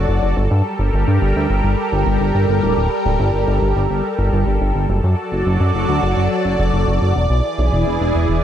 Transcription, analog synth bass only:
0.09 F#1
0.23 F#1
0.37 G1
0.51 G2
0.79 G1
0.93 G1
1.08 G2
1.22 G1
1.36 D2
1.50 G1
1.64 G1
1.92 G1
2.07 G1
2.21 G1
2.35 G1
2.49 G1
2.63 D1
2.77 D1
3.06 D1
3.20 G1
3.34 G1
3.48 G1
3.62 G1
3.76 G1
3.91 G1
4.19 G1
4.33 G1
4.47 G1
4.61 G1
4.75 G1
4.89 F#1
5.04 F#2
5.32 F#1
5.46 F#1
5.60 F#2
5.75 F#1
5.89 D2
6.03 F#1
6.17 F#1
6.45 F#1
6.59 F#1
6.74 F#1
6.88 F#1
7.02 F#1
7.16 E1
7.30 B1
7.58 B1
7.73 E1
7.87 E1
8.01 E1
8.15 E1
8.29 E1

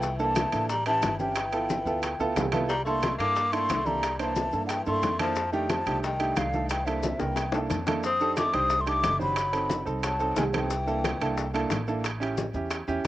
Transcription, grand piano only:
0.19 A#3 D4 E4 A4
0.53 A#3 D4 E4 A4
0.87 C#4 E4 G4
1.20 C#4 E4 G4
1.53 B3 E4 F4 A4
1.86 B3 E4 F4 A4
2.20 B3 E4 F4 A4
2.53 B3 E4 F4 A4
2.86 A#3 D4 E4 A4
3.20 A#3 D4 E4 A4
3.52 A#3 D4 E4 A4
3.85 A#3 D4 E4 A4
4.19 A#3 D4 E4 C5
4.53 A#3 D4 E4 A4
4.86 A#3 D4 E4 A4
5.20 A#3 D4 E4 A4
5.52 A3 D4 D#4 G4
5.86 A3 D4 D#4 G4
6.20 A3 D4 D#4 G4
6.54 A3 D4 D#4 A4
6.87 A#3 D4 E4 A4
7.19 A#3 D4 E4 A#4
7.54 A#3 D4 E4 A4
7.71 A5
7.87 A#3 D4 E4 A4
8.21 D4 D#4 G4 A4
8.54 D4 D#4 G4 C5
8.86 D4 D#4 G4 A4
9.19 D4 D#4 G4 C5
9.53 C4 D#4 A4
9.85 C4 D#4 A4
10.19 C4 D#4 A4
10.53 C4 D#4 A4
10.87 A#3 D4 E4 A4
11.22 A#3 D4 E4 A4
11.54 A#3 D4 E4 A4
11.88 A#3 D4 E4 A4
12.20 C#4 E4 G4
12.54 C#4 E4 G4
12.88 C#4 E4 G4

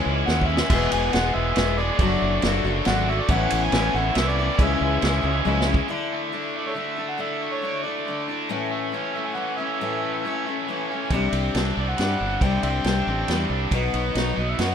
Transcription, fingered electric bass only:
0.06 C#2
0.28 D#2
0.70 E1
0.92 E1
1.14 E1
1.35 E1
1.57 E1
1.99 F#1
2.22 F#1
2.43 F#1
2.64 F#1
2.87 G#1
3.29 A1
3.52 A1
3.73 A1
3.94 A1
4.16 C2
4.59 C#2
4.81 C#2
5.03 C#2
5.24 C#2
5.46 C#2
11.11 C2
11.33 C2
11.55 C2
11.77 C2
11.99 G2
12.21 G1
12.41 C2
12.63 C2
12.85 C2
13.07 A1
13.28 E2
13.50 C2
13.72 B1
13.94 B1
14.15 B1
14.38 B1
14.59 F#2

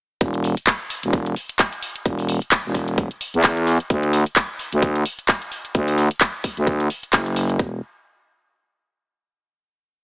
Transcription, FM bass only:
0.21 E1
1.03 E1
2.06 E1
2.65 E1
3.34 E2
3.44 E2
3.90 D2
4.72 D2
5.75 D2
6.57 D2
7.13 F#1
7.59 E1

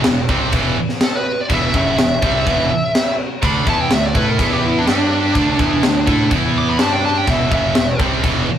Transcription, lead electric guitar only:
1.03 A4
1.17 B4
1.41 D5
1.53 E5
1.76 E5
3.45 B5
3.69 A5
3.81 G5
3.93 E5
4.05 D5
4.17 B4
4.29 A#4
4.41 A4
4.53 G4
4.66 E4
4.78 D4
4.90 D4
6.58 D6
6.70 B5
6.81 A5
6.93 G5
7.05 A5
7.17 G5
7.30 E5
7.53 E5

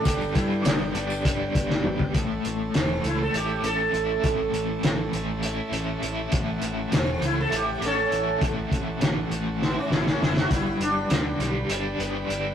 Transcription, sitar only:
Already playing: D4
0.35 E4
0.64 D4
1.23 C#4
2.77 C4
3.07 E4
3.22 A4
3.37 G4
3.66 A4
6.94 C4
7.25 E4
7.40 A4
7.56 G4
7.85 C#4 A4
9.64 B3
9.79 C#4
9.93 E4
10.09 C#4
10.23 E4
10.39 F#4
10.53 E4
10.82 D4

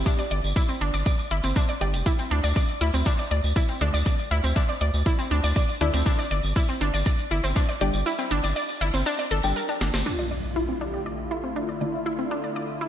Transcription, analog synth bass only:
0.31 G1
0.44 G1
0.81 G1
0.94 G1
1.31 G1
1.44 G1
1.81 G1
1.94 F1
2.31 D2
2.44 D2
2.81 D2
2.94 D2
3.31 D2
3.44 D2
3.81 D2
3.94 D2
4.31 D2
4.44 D2
4.81 D2
4.94 D2
5.31 D2
5.44 D2
5.81 D2
5.94 D2
6.31 G1
6.44 G1
6.81 G1
6.94 G1
7.31 G1
7.44 G1
7.81 G1
7.94 G1
8.31 G1
8.44 G1
8.81 G1
8.94 G1
9.31 G1
9.44 G1
9.81 G1
9.94 G1

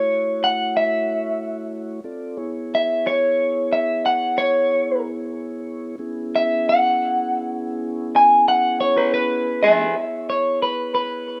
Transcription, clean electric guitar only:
Already playing: C#5
0.44 F#5
0.77 E5
2.75 E5
3.07 C#5
3.73 E5
4.06 F#5
4.38 C#5
6.36 E5
6.69 F#5
8.16 G#5
8.48 F#5
8.81 C#5
8.97 B4
9.14 B4
9.63 G#4 E5
10.30 C#5
10.62 B4
10.95 B4

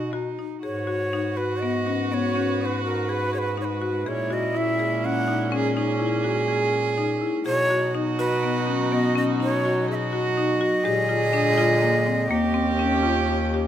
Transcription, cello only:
Already playing: F#4
0.13 D#4
0.62 F#4
4.04 E4
5.52 G#4
5.77 G#4
7.47 F#4
9.88 F#4
10.84 G#4
12.28 G4

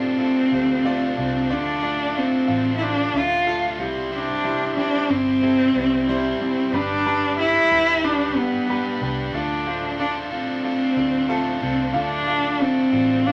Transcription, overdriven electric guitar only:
Already playing: D4 F4 A4
0.18 D3 A3 D4 F4 A4
0.83 A3 D4 F4 A4
1.49 D3 A3 D4 F4 A4
2.14 A3 D4 F4 A4
2.47 D4 F4 A4
2.81 D3 A3 D4 F4 A4
3.45 A3 D4 F4 A4
3.78 G3 C4 E4 C5
4.11 C3 E3 G3 C4 E4 C5
4.76 G3 C4 E4 C5
5.09 G3 C4 E4 C5
5.41 C3 E3 G3 C4 E4 C5
6.06 G3 C4 E4 C5
6.72 G3 D4 G4 B4
7.37 G3 D4 G4 B4
7.70 D4 G4 B4
8.03 G3 D4 G4 B4
8.68 G3 D4 G4 B4
9.01 D4 G4 B4
9.33 D3 A3 D4 F4 A4
9.98 A3 D4 F4 A4
10.30 D4 F4 A4
10.63 D3 A3 D4 F4 A4
11.28 A3 D4 F4 A4
11.61 D4 F4 A4
11.93 D3 A3 D4 F4 A4
12.59 A3 D4 F4 A4
12.92 D4 F4 A4
13.25 D3 A3 D4 F4 A4

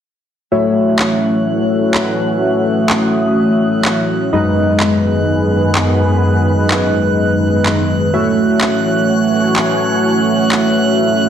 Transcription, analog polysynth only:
0.52 A3 F#4 C#5 E5
4.33 F#2 G#3 D#4 B4 D#5
8.14 A3 F#4 C#5 E5

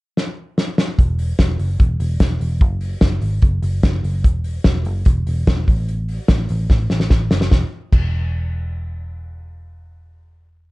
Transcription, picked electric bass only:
0.99 E1
1.39 E1
1.59 F#1
1.79 E1
2.00 E1
2.20 E1
2.40 E1
2.61 F#1
3.02 F#1
3.22 G#1
3.43 F#1
3.62 F#1
3.83 F#1
4.03 F#1
4.25 E1
4.65 E1
4.86 F#1
5.06 E1
5.27 E1
5.47 E1
5.68 A1
6.29 A1
6.50 A1
6.70 A1
6.91 A1
7.11 A1
7.31 F#1
7.52 E1
7.93 E1

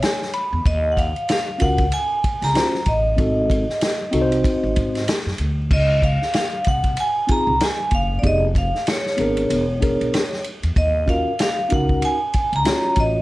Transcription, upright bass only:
0.53 E2
0.65 D#2
1.62 C#2
2.42 C#2
2.87 A1
3.18 G#1
4.13 C2
4.63 G#1
4.77 G#2
5.26 F#2
5.40 D2
5.71 C#2
6.67 C2
7.47 C2
7.92 F#1
8.23 F1
9.19 G#1
9.50 E1
10.01 B1
10.64 E2
10.76 D#2
11.72 C#2
12.53 C#2
12.97 A1

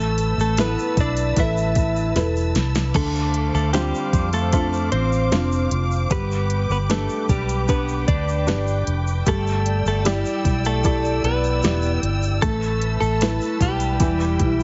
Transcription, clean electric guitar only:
Already playing: A3 A4
0.41 A3 A4
0.61 B3 B4
1.00 D4 D5
1.39 E4 E5
2.96 A3 A4
3.55 A3 A4
3.73 G3 G4
4.33 A3 A4
4.53 A3 A4
4.92 C4 C5
6.11 B3 B4
6.71 B3 B4
6.90 A3 A4
7.29 G3 G4
7.69 B3 B4
8.08 D4 D5
9.28 A3 A4
9.88 A3 A4
10.06 G3 G4
10.66 A3 A4
10.86 A3 A4
11.25 B3 B4
12.42 A3 A4
13.00 A3 A4
13.62 G3 G4

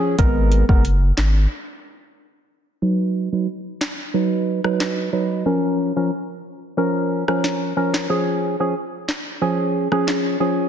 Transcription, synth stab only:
Already playing: F3 C#4 G#4
0.18 G#3 B3 A#4
0.69 G#3 B3 A#4
2.82 F#3 D#4 B4
3.32 F#3 D#4 B4
4.14 F#3 D#4 B4
4.64 F#3 D#4 B4
5.13 F#3 D#4 B4
5.46 F3 C#4 A#4
5.96 F3 C#4 A#4
6.77 F3 C#4 A#4
7.28 F3 C#4 A#4
7.77 F3 C#4 A#4
8.10 F3 C#4 G#4
8.60 F3 C#4 G#4
9.42 F3 C#4 G#4
9.92 F3 C#4 G#4
10.40 F3 C#4 G#4

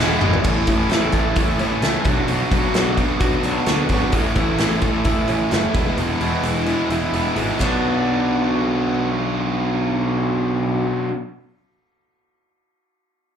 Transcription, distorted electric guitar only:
0.00 E3 G#3 B3 E4
0.22 E3 G#3 B3 E4
0.44 A2 E3 A3 C#4 E4
0.67 A2 E3 A3 C#4 E4
0.91 A2 E3 A3 C#4 E4
1.14 A2 E3 A3 C#4 E4
1.36 A2 E3 A3 C#4 E4
1.60 A2 E3 A3 C#4 E4
1.83 A2 E3 A3 C#4 E4
2.06 B2 F#3 B3 D4 F#4
2.29 B2 F#3 B3 D4 F#4
2.52 B2 F#3 B3 D4 F#4
2.75 B2 F#3 B3 D4 F#4
2.98 B2 F#3 B3 D4 F#4
3.20 B2 F#3 B3 D4 F#4
3.44 B2 F#3 B3 D4 F#4
3.67 B2 F#3 B3 D4 F#4
3.90 B2 F#3 B3 D4 F#4
4.12 A2 E3 A3 C#4 E4
4.35 A2 E3 A3 C#4 E4
4.58 A2 E3 A3 C#4 E4
4.81 A2 E3 A3 C#4 E4
5.05 A2 E3 A3 C#4 E4
5.28 A2 E3 A3 C#4 E4
5.50 A2 E3 A3 C#4 E4
5.73 E3 G#3 B3 E4
5.97 E3 G#3 B3 E4
6.20 E3 G#3 B3 E4
6.44 E3 G#3 B3 E4
6.67 E3 G#3 B3 E4
6.90 E3 G#3 B3 E4
7.13 E3 G#3 B3 E4
7.36 E3 G#3 B3 E4
7.59 B2 F#3 B3 D4
7.63 F#4

